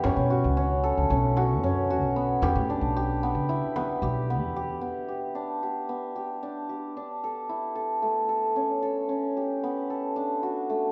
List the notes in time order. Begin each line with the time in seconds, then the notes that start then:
Already playing: B3 E4 G4
0.04 F#2 C#4, frame drum
0.16 B2
0.30 F#4
0.44 C#2
0.57 C#4
0.84 A4
0.97 C#2
1.10 B1 C#4
1.37 F#4, frame drum
1.62 F#2 C#4
1.90 F#4
2.03 B1
2.16 B3
2.42 E2 G4, frame drum
2.55 A2
2.70 D4
2.81 B1
2.96 G4
3.23 B3
3.35 C#3
3.49 E4, frame drum
3.76 B3, frame drum
4.02 B1 G4
4.30 B3
4.41 E2
4.56 G4
4.81 B3
5.08 G4
5.35 D4
5.63 G4
5.89 B3
6.16 G4
6.43 D4
6.69 G4
6.97 D4
7.24 A4
7.49 E4
7.75 A4
8.02 A3
8.29 A4
8.56 C#4
8.82 A4
9.09 C#4
9.37 G4
9.64 B3
9.90 A4
10.16 D4
10.43 F#4
10.70 A3